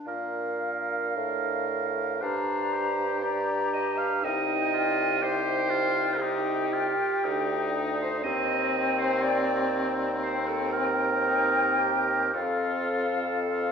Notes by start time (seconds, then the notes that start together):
0.06 A#2 D4 A#4 F5
1.16 A2
2.21 G2 D4 C5 A#5
2.74 G4
3.23 D4 D5 A#5
3.73 D#5
3.98 F5
4.23 C2 D#4 D#5 G5
4.74 F4
5.22 D#4 G4 C5 G5
5.70 F4
6.20 D#4 G4 G5
6.73 F4
7.24 D2 D4 D#4
8.00 C5
8.23 D#2 C4 D#5 G5
8.99 C5
9.23 D5
10.21 C4 C5 G5
10.48 A4
10.73 A#4
11.27 D#4
11.78 G4
12.33 F2 C4 F4 A4 F5
13.51 F4